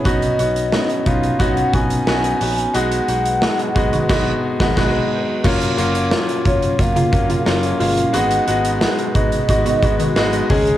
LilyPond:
<<
  \new Staff \with { instrumentName = "Soft synth lead" } { \time 4/4 \key gis \dorian \tempo 4 = 89 dis''4. eis''8 fis''8 gis''4. | fis''2. r4 | r4. cis''8 eis''4 r8 eis''8 | fis''4 r8 dis''2 r8 | }
  \new Staff \with { instrumentName = "Grand piano" } { \time 4/4 \key gis \dorian <b cis' dis' fis'>8 <b cis' dis' fis'>8 <b cis' dis' fis'>8 <b cis' dis' eis'>8 <b cis' dis' fis'>8 <b cis' dis' fis'>8 <b cis' dis' fis'>8 <b cis' dis' fis'>8 | <gis b dis' fis'>8 <gis b dis' fis'>8 <gis b dis' fis'>8 <gis b dis' fis'>8 <gis b dis' fis'>8 r16 <gis b dis' fis'>16 <gis b dis' fis'>8 r8 | <fis ais cis' eis'>8 <fis ais cis' eis'>8 <fis ais cis' eis'>8 <fis ais cis' eis'>8 <fis ais cis' eis'>8 <fis ais cis' eis'>8 <fis ais cis' eis'>8 <fis ais cis' eis'>8 | <gis b dis' fis'>8 <gis b dis' fis'>8 <gis b dis' fis'>8 <gis b dis' fis'>8 <gis b dis' fis'>8 <gis b dis' fis'>8 <gis b dis' fis'>8 <gis cis' dis' gis'>8 | }
  \new Staff \with { instrumentName = "String machine" } { \time 4/4 \key gis \dorian <dis b cis'>1 | <fis gis>1 | <fis cis' eis' ais'>1 | <gis dis' fis' b'>2.~ <gis dis' fis' b'>8 <cis cis' gis'>8 | }
  \new Staff \with { instrumentName = "Analog polysynth" } { \time 4/4 \key gis \dorian r1 | r4. r16 <dis b fis'>16 <dis b fis'>8 r16 <dis b fis'>16 <dis b fis'>8 r8 | r2 r16 <cis ais eis'>16 r16 <cis ais eis'>16 r8 <b, gis eis'>8~ | <b, gis eis'>16 r2 <dis b fis'>16 r16 <dis b fis'>16 r8 <dis cis' gis'>8 | }
  \new Staff \with { instrumentName = "Fingered electric bass" } { \clef bass \time 4/4 \key gis \dorian b,,8 b,,8. r16 b,,8 b,,8 b,,8 b,,8 ais,,8 | b,,8 b,,8. r16 b,,8 b,,8 r16 b,,16 b,,8 r8 | fis,,8 fis,,8. r16 fis,,8 fis,,8 fis,,8 fis,,8 g,,8 | gis,,8 gis,,8. r16 gis,,8 gis,,8 gis,,8 gis,,8 cis,8 | }
  \new DrumStaff \with { instrumentName = "Drums" } \drummode { \time 4/4 <hh bd>16 hh16 hh16 hh16 sn16 hh16 <hh bd>16 hh16 <hh bd>16 hh16 <hh bd>16 hh16 sn16 hh16 hho16 hh16 | hh16 hh16 hh16 hh16 sn16 hh16 <hh bd>16 hh16 <cymc bd sn>8. <bd sn>16 <cymc bd sn>4 | <cymc bd>16 hh16 hh16 hh16 sn16 hh16 <hh bd>16 hh16 <hh bd>16 hh16 <hh bd>16 hh16 sn16 hh16 hho16 hh16 | hh16 hh16 hh16 hh16 sn16 hh16 <hh bd>16 hh16 <hh bd>16 hh16 <hh bd>16 hh16 sn16 hh16 <hho bd>16 hh16 | }
>>